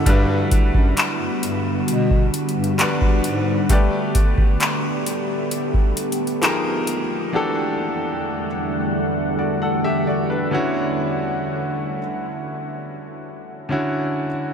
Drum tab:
HH |x-----x-----x-----x-----x-----x-x-x-x-----x-----|x-----x-----x-----x-----x-----x-x-x-x-----x-----|------------------------------------------------|------------------------------------------------|
CP |------------x-----------------------x-----------|------------x-----------------------x-----------|------------------------------------------------|------------------------------------------------|
BD |o-----o--o-----------------o-----------o--------|o-----o--o-----------------o--------------------|------------------------------------------------|------------------------------------------------|